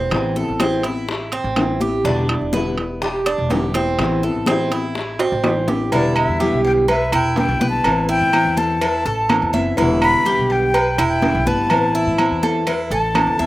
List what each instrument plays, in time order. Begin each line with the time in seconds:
Already playing: nylon-string guitar G3 B3 E4, cuban tres C4
0.10 upright bass A1, nylon-string guitar E3 B3 C4 E4, high bongo, high conga, high timbale, claves
0.35 nylon-string guitar B3 C4 E4, cuban tres A4, high bongo, high conga
0.48 upright bass A1
0.59 nylon-string guitar E3 B3 C4 E4, cuban tres C4, high bongo, high conga, high timbale, low timbale, claves
0.83 nylon-string guitar B3 C4 E4, cuban tres E4, high bongo, high conga, high timbale
1.08 muted nylon-string guitar stroke, high bongo, high conga
1.32 cuban tres C4, high conga, high timbale
1.44 upright bass A1
1.56 nylon-string guitar E3 B3 C4 E4, high bongo, low bongo, high conga, high timbale, low timbale, claves
1.81 nylon-string guitar B3 C4 E4, cuban tres G4, high bongo, high conga
2.04 upright bass E1, nylon-string guitar B2 D3 G3 B3 E4, cuban tres D4, high bongo, high conga
2.29 nylon-string guitar G3 B3 E4, high bongo, high conga, high timbale, claves
2.41 upright bass E1
2.53 nylon-string guitar B2 D3 G3 B3 E4, cuban tres B4, high bongo, high conga, low timbale
2.78 nylon-string guitar G3 B3 E4, high bongo, high timbale
3.02 cuban tres G4, muted nylon-string guitar stroke, high bongo, high conga
3.26 cuban tres D4, high conga, high timbale, claves
3.38 upright bass E1
3.50 nylon-string guitar B2 D3 G3 B3 E4, cuban tres G4, high bongo, low bongo, high conga, low timbale
3.74 nylon-string guitar G3 B3 E4, cuban tres C4, high bongo, high conga, high timbale
3.98 upright bass A1, nylon-string guitar E3 B3 C4 E4, high bongo, high conga, high timbale, claves
4.22 nylon-string guitar B3 C4 E4, cuban tres A4, high bongo, high conga
4.35 upright bass A1
4.46 nylon-string guitar E3 B3 C4 E4, cuban tres C4, high bongo, high conga, high timbale, low timbale, claves
4.71 nylon-string guitar B3 C4 E4, cuban tres E4, high bongo, high conga, high timbale
4.95 muted nylon-string guitar stroke, high bongo, high conga
5.19 cuban tres C4, high conga, high timbale
5.32 upright bass A1
5.44 nylon-string guitar E3 B3 C4 E4, high bongo, low bongo, high conga, high timbale, claves
5.68 nylon-string guitar B3 C4 E4, cuban tres G4, high bongo, high conga, low timbale
5.92 upright bass E1, nylon-string guitar B2 D3 G3 B3 E4, cuban tres E4, flute D5, cowbell, high conga, low agogo
6.16 flute E5, high conga, low agogo, claves
6.28 upright bass E2
6.40 nylon-string guitar B2 D3 G3 B3 E4, cuban tres G4, cowbell, high conga, low timbale
6.53 upright bass B1
6.64 flute G5, cowbell, high conga
6.88 cuban tres B4, flute E5, muted nylon-string guitar stroke, cowbell, high conga, low agogo
7.12 upright bass E1, cuban tres E4, flute G5, high conga, low agogo, claves
7.36 nylon-string guitar D3 G3 B3 E4, flute G5, cowbell, high conga, low timbale
7.48 upright bass B1
7.60 upright bass B1, nylon-string guitar D3 G3 B3 E4, cuban tres B4, high conga
7.70 flute A5
7.84 upright bass A1, nylon-string guitar E3 B3 C4 E4, cowbell, high conga, low agogo, claves
8.09 cuban tres E4, flute G5, high conga
8.21 upright bass A2
8.33 nylon-string guitar E3 B3 C4 E4, cowbell, high conga, low timbale, low agogo, claves
8.45 upright bass E2
8.57 cuban tres A4, flute A5, cowbell, high conga
8.81 cuban tres E4, muted nylon-string guitar stroke, cowbell, high conga, low agogo
9.05 upright bass A1, cuban tres A4, high conga
9.29 nylon-string guitar E3 B3 C4 E4, cowbell, high conga, low timbale, low agogo, claves
9.42 upright bass E2
9.53 upright bass F#1, nylon-string guitar B3 C4 E4, cuban tres E5, cowbell, high conga
9.77 upright bass E1, nylon-string guitar B2 D3 G3 B3 E4, cuban tres E4, cowbell, high conga, low agogo
10.02 flute B5, high conga, low agogo, claves
10.14 upright bass E2
10.25 nylon-string guitar B2 D3 G3 B3 E4, cuban tres G4, cowbell, high conga, low timbale
10.38 upright bass B1
10.50 flute G5, cowbell, high conga
10.74 cuban tres B4, muted nylon-string guitar stroke, cowbell, high conga, low agogo
10.98 upright bass E1, cuban tres E4, high conga, low agogo, claves
11.08 flute G5
11.22 nylon-string guitar D3 G3 B3 E4, cowbell, high conga, low timbale
11.35 upright bass B1
11.46 upright bass G1, nylon-string guitar D3 G3 B3 E4, cuban tres B4, flute A5, high conga
11.70 upright bass A1, nylon-string guitar E3 B3 C4 E4, cowbell, high conga, low agogo, claves
11.95 cuban tres E4, high conga
12.07 upright bass A2
12.18 nylon-string guitar E3 B3 C4 E4, cowbell, high conga, low timbale, low agogo, claves
12.31 upright bass E2
12.43 cuban tres A4, cowbell, high conga
12.67 cuban tres E4, muted nylon-string guitar stroke, cowbell, high conga, low agogo
12.90 upright bass A1, cuban tres A4, flute A5, high conga
13.14 nylon-string guitar E3 B3 C4 E4, cowbell, high conga, low timbale, low agogo, claves
13.27 upright bass E2
13.38 upright bass E2, nylon-string guitar B3 C4 E4, cuban tres E5, cowbell